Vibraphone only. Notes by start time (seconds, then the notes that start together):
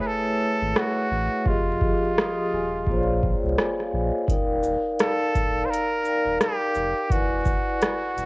Already playing: A3 E4 G#4 B4 C#5 E5 G#5
1.44 F3 F4 G4
1.48 G#4 D#5
2.18 D#6
2.38 C6
2.53 G#5
2.75 F5
2.86 A#3 F4 G#4
2.91 C5 C#5
2.98 D5
3.23 G5
3.58 G#5
3.81 F5
4.05 D#5
4.27 D#4 A#4 D5 F5
4.32 G5
6.03 D#4 A#4 D5 F5
6.08 G5
7.08 E4 B4 D5 F#5
7.13 G#5